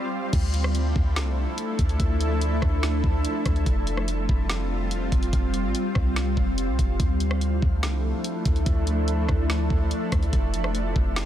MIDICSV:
0, 0, Header, 1, 4, 480
1, 0, Start_track
1, 0, Tempo, 416667
1, 380, Time_signature, 4, 2, 24, 8
1, 12965, End_track
2, 0, Start_track
2, 0, Title_t, "Ambient pad"
2, 0, Program_c, 0, 92
2, 0, Note_on_c, 0, 55, 84
2, 0, Note_on_c, 0, 60, 74
2, 0, Note_on_c, 0, 65, 87
2, 341, Note_off_c, 0, 60, 0
2, 341, Note_off_c, 0, 65, 0
2, 342, Note_off_c, 0, 55, 0
2, 379, Note_on_c, 0, 64, 77
2, 380, Note_on_c, 0, 53, 86
2, 380, Note_on_c, 0, 62, 77
2, 381, Note_on_c, 0, 69, 89
2, 382, Note_on_c, 0, 57, 77
2, 4181, Note_off_c, 0, 64, 0
2, 4182, Note_off_c, 0, 53, 0
2, 4182, Note_off_c, 0, 62, 0
2, 4182, Note_off_c, 0, 69, 0
2, 4183, Note_off_c, 0, 57, 0
2, 4220, Note_on_c, 0, 55, 83
2, 4220, Note_on_c, 0, 65, 94
2, 4222, Note_on_c, 0, 60, 75
2, 8021, Note_off_c, 0, 55, 0
2, 8022, Note_off_c, 0, 60, 0
2, 8022, Note_off_c, 0, 65, 0
2, 8059, Note_on_c, 0, 62, 76
2, 8060, Note_on_c, 0, 53, 84
2, 8060, Note_on_c, 0, 57, 77
2, 8060, Note_on_c, 0, 64, 78
2, 8061, Note_on_c, 0, 69, 89
2, 11861, Note_off_c, 0, 57, 0
2, 11861, Note_off_c, 0, 62, 0
2, 11862, Note_off_c, 0, 53, 0
2, 11862, Note_off_c, 0, 64, 0
2, 11862, Note_off_c, 0, 69, 0
2, 11901, Note_on_c, 0, 60, 88
2, 11901, Note_on_c, 0, 65, 76
2, 11903, Note_on_c, 0, 67, 87
2, 12965, Note_off_c, 0, 60, 0
2, 12965, Note_off_c, 0, 65, 0
2, 12965, Note_off_c, 0, 67, 0
2, 12965, End_track
3, 0, Start_track
3, 0, Title_t, "808-style bass"
3, 0, Program_c, 1, 38
3, 380, Note_on_c, 1, 38, 113
3, 1071, Note_off_c, 1, 38, 0
3, 1103, Note_on_c, 1, 38, 108
3, 1342, Note_on_c, 1, 36, 100
3, 1359, Note_off_c, 1, 38, 0
3, 1683, Note_off_c, 1, 36, 0
3, 2060, Note_on_c, 1, 38, 109
3, 2290, Note_off_c, 1, 38, 0
3, 2300, Note_on_c, 1, 38, 112
3, 2991, Note_off_c, 1, 38, 0
3, 3023, Note_on_c, 1, 38, 109
3, 3482, Note_off_c, 1, 38, 0
3, 3500, Note_on_c, 1, 38, 107
3, 3730, Note_off_c, 1, 38, 0
3, 3981, Note_on_c, 1, 38, 104
3, 4211, Note_off_c, 1, 38, 0
3, 4221, Note_on_c, 1, 29, 111
3, 4912, Note_off_c, 1, 29, 0
3, 4942, Note_on_c, 1, 29, 106
3, 5660, Note_on_c, 1, 28, 99
3, 5677, Note_off_c, 1, 29, 0
3, 5781, Note_on_c, 1, 29, 98
3, 5798, Note_off_c, 1, 28, 0
3, 5894, Note_off_c, 1, 29, 0
3, 5900, Note_on_c, 1, 29, 102
3, 6131, Note_off_c, 1, 29, 0
3, 6140, Note_on_c, 1, 29, 108
3, 6498, Note_on_c, 1, 33, 103
3, 6516, Note_off_c, 1, 29, 0
3, 6613, Note_off_c, 1, 33, 0
3, 6862, Note_on_c, 1, 36, 103
3, 7322, Note_off_c, 1, 36, 0
3, 7339, Note_on_c, 1, 29, 103
3, 7699, Note_on_c, 1, 36, 101
3, 7717, Note_off_c, 1, 29, 0
3, 7814, Note_off_c, 1, 36, 0
3, 7821, Note_on_c, 1, 29, 102
3, 8051, Note_off_c, 1, 29, 0
3, 8060, Note_on_c, 1, 38, 109
3, 8751, Note_off_c, 1, 38, 0
3, 8784, Note_on_c, 1, 38, 108
3, 9021, Note_on_c, 1, 36, 102
3, 9038, Note_off_c, 1, 38, 0
3, 9363, Note_off_c, 1, 36, 0
3, 9741, Note_on_c, 1, 38, 103
3, 9971, Note_off_c, 1, 38, 0
3, 9980, Note_on_c, 1, 38, 111
3, 10671, Note_off_c, 1, 38, 0
3, 10702, Note_on_c, 1, 38, 104
3, 11162, Note_off_c, 1, 38, 0
3, 11179, Note_on_c, 1, 38, 102
3, 11410, Note_off_c, 1, 38, 0
3, 11660, Note_on_c, 1, 38, 102
3, 11890, Note_off_c, 1, 38, 0
3, 11901, Note_on_c, 1, 29, 108
3, 12592, Note_off_c, 1, 29, 0
3, 12623, Note_on_c, 1, 29, 108
3, 12965, Note_off_c, 1, 29, 0
3, 12965, End_track
4, 0, Start_track
4, 0, Title_t, "Drums"
4, 380, Note_on_c, 9, 42, 85
4, 380, Note_on_c, 9, 49, 103
4, 381, Note_on_c, 9, 36, 121
4, 495, Note_off_c, 9, 42, 0
4, 495, Note_off_c, 9, 49, 0
4, 496, Note_off_c, 9, 36, 0
4, 619, Note_on_c, 9, 42, 72
4, 734, Note_off_c, 9, 42, 0
4, 741, Note_on_c, 9, 37, 96
4, 856, Note_off_c, 9, 37, 0
4, 860, Note_on_c, 9, 42, 70
4, 975, Note_off_c, 9, 42, 0
4, 1103, Note_on_c, 9, 36, 92
4, 1218, Note_off_c, 9, 36, 0
4, 1340, Note_on_c, 9, 38, 105
4, 1341, Note_on_c, 9, 42, 72
4, 1455, Note_off_c, 9, 38, 0
4, 1456, Note_off_c, 9, 42, 0
4, 1818, Note_on_c, 9, 42, 85
4, 1933, Note_off_c, 9, 42, 0
4, 2060, Note_on_c, 9, 42, 69
4, 2061, Note_on_c, 9, 36, 97
4, 2175, Note_off_c, 9, 42, 0
4, 2176, Note_off_c, 9, 36, 0
4, 2181, Note_on_c, 9, 42, 41
4, 2296, Note_off_c, 9, 42, 0
4, 2300, Note_on_c, 9, 42, 88
4, 2301, Note_on_c, 9, 36, 125
4, 2416, Note_off_c, 9, 36, 0
4, 2416, Note_off_c, 9, 42, 0
4, 2541, Note_on_c, 9, 42, 74
4, 2656, Note_off_c, 9, 42, 0
4, 2782, Note_on_c, 9, 42, 74
4, 2897, Note_off_c, 9, 42, 0
4, 3019, Note_on_c, 9, 37, 91
4, 3024, Note_on_c, 9, 36, 95
4, 3134, Note_off_c, 9, 37, 0
4, 3139, Note_off_c, 9, 36, 0
4, 3261, Note_on_c, 9, 38, 102
4, 3261, Note_on_c, 9, 42, 74
4, 3376, Note_off_c, 9, 38, 0
4, 3377, Note_off_c, 9, 42, 0
4, 3500, Note_on_c, 9, 36, 87
4, 3615, Note_off_c, 9, 36, 0
4, 3739, Note_on_c, 9, 42, 83
4, 3854, Note_off_c, 9, 42, 0
4, 3981, Note_on_c, 9, 36, 95
4, 3981, Note_on_c, 9, 42, 72
4, 3983, Note_on_c, 9, 37, 100
4, 4096, Note_off_c, 9, 36, 0
4, 4096, Note_off_c, 9, 42, 0
4, 4098, Note_off_c, 9, 37, 0
4, 4101, Note_on_c, 9, 42, 41
4, 4216, Note_off_c, 9, 42, 0
4, 4220, Note_on_c, 9, 42, 86
4, 4221, Note_on_c, 9, 36, 124
4, 4335, Note_off_c, 9, 42, 0
4, 4336, Note_off_c, 9, 36, 0
4, 4458, Note_on_c, 9, 42, 70
4, 4573, Note_off_c, 9, 42, 0
4, 4578, Note_on_c, 9, 37, 94
4, 4694, Note_off_c, 9, 37, 0
4, 4700, Note_on_c, 9, 42, 75
4, 4815, Note_off_c, 9, 42, 0
4, 4943, Note_on_c, 9, 36, 99
4, 5058, Note_off_c, 9, 36, 0
4, 5179, Note_on_c, 9, 38, 101
4, 5179, Note_on_c, 9, 42, 74
4, 5294, Note_off_c, 9, 38, 0
4, 5294, Note_off_c, 9, 42, 0
4, 5657, Note_on_c, 9, 42, 86
4, 5773, Note_off_c, 9, 42, 0
4, 5900, Note_on_c, 9, 36, 98
4, 5900, Note_on_c, 9, 42, 71
4, 6015, Note_off_c, 9, 36, 0
4, 6015, Note_off_c, 9, 42, 0
4, 6020, Note_on_c, 9, 42, 41
4, 6136, Note_off_c, 9, 42, 0
4, 6140, Note_on_c, 9, 36, 126
4, 6140, Note_on_c, 9, 42, 86
4, 6255, Note_off_c, 9, 36, 0
4, 6255, Note_off_c, 9, 42, 0
4, 6379, Note_on_c, 9, 42, 69
4, 6494, Note_off_c, 9, 42, 0
4, 6620, Note_on_c, 9, 42, 72
4, 6735, Note_off_c, 9, 42, 0
4, 6857, Note_on_c, 9, 37, 95
4, 6863, Note_on_c, 9, 36, 95
4, 6972, Note_off_c, 9, 37, 0
4, 6978, Note_off_c, 9, 36, 0
4, 7100, Note_on_c, 9, 38, 101
4, 7101, Note_on_c, 9, 42, 76
4, 7216, Note_off_c, 9, 38, 0
4, 7216, Note_off_c, 9, 42, 0
4, 7339, Note_on_c, 9, 36, 89
4, 7454, Note_off_c, 9, 36, 0
4, 7579, Note_on_c, 9, 42, 81
4, 7694, Note_off_c, 9, 42, 0
4, 7821, Note_on_c, 9, 36, 96
4, 7822, Note_on_c, 9, 42, 69
4, 7936, Note_off_c, 9, 36, 0
4, 7937, Note_off_c, 9, 42, 0
4, 8060, Note_on_c, 9, 36, 127
4, 8061, Note_on_c, 9, 42, 85
4, 8176, Note_off_c, 9, 36, 0
4, 8176, Note_off_c, 9, 42, 0
4, 8298, Note_on_c, 9, 42, 70
4, 8414, Note_off_c, 9, 42, 0
4, 8419, Note_on_c, 9, 37, 97
4, 8534, Note_off_c, 9, 37, 0
4, 8540, Note_on_c, 9, 42, 75
4, 8655, Note_off_c, 9, 42, 0
4, 8783, Note_on_c, 9, 36, 92
4, 8898, Note_off_c, 9, 36, 0
4, 9020, Note_on_c, 9, 38, 107
4, 9020, Note_on_c, 9, 42, 78
4, 9135, Note_off_c, 9, 38, 0
4, 9136, Note_off_c, 9, 42, 0
4, 9497, Note_on_c, 9, 42, 86
4, 9612, Note_off_c, 9, 42, 0
4, 9740, Note_on_c, 9, 36, 104
4, 9740, Note_on_c, 9, 42, 74
4, 9855, Note_off_c, 9, 36, 0
4, 9855, Note_off_c, 9, 42, 0
4, 9860, Note_on_c, 9, 42, 42
4, 9975, Note_off_c, 9, 42, 0
4, 9979, Note_on_c, 9, 42, 84
4, 9980, Note_on_c, 9, 36, 127
4, 10094, Note_off_c, 9, 42, 0
4, 10095, Note_off_c, 9, 36, 0
4, 10218, Note_on_c, 9, 42, 72
4, 10333, Note_off_c, 9, 42, 0
4, 10458, Note_on_c, 9, 42, 74
4, 10573, Note_off_c, 9, 42, 0
4, 10696, Note_on_c, 9, 37, 89
4, 10702, Note_on_c, 9, 36, 91
4, 10812, Note_off_c, 9, 37, 0
4, 10818, Note_off_c, 9, 36, 0
4, 10941, Note_on_c, 9, 38, 101
4, 10941, Note_on_c, 9, 42, 72
4, 11056, Note_off_c, 9, 38, 0
4, 11056, Note_off_c, 9, 42, 0
4, 11179, Note_on_c, 9, 36, 89
4, 11294, Note_off_c, 9, 36, 0
4, 11417, Note_on_c, 9, 42, 86
4, 11532, Note_off_c, 9, 42, 0
4, 11659, Note_on_c, 9, 42, 72
4, 11660, Note_on_c, 9, 36, 99
4, 11662, Note_on_c, 9, 37, 99
4, 11775, Note_off_c, 9, 42, 0
4, 11776, Note_off_c, 9, 36, 0
4, 11777, Note_off_c, 9, 37, 0
4, 11780, Note_on_c, 9, 42, 41
4, 11895, Note_off_c, 9, 42, 0
4, 11899, Note_on_c, 9, 42, 82
4, 11900, Note_on_c, 9, 36, 124
4, 12014, Note_off_c, 9, 42, 0
4, 12016, Note_off_c, 9, 36, 0
4, 12138, Note_on_c, 9, 42, 74
4, 12253, Note_off_c, 9, 42, 0
4, 12259, Note_on_c, 9, 37, 96
4, 12374, Note_off_c, 9, 37, 0
4, 12380, Note_on_c, 9, 42, 71
4, 12495, Note_off_c, 9, 42, 0
4, 12623, Note_on_c, 9, 36, 92
4, 12739, Note_off_c, 9, 36, 0
4, 12861, Note_on_c, 9, 38, 101
4, 12861, Note_on_c, 9, 42, 74
4, 12965, Note_off_c, 9, 38, 0
4, 12965, Note_off_c, 9, 42, 0
4, 12965, End_track
0, 0, End_of_file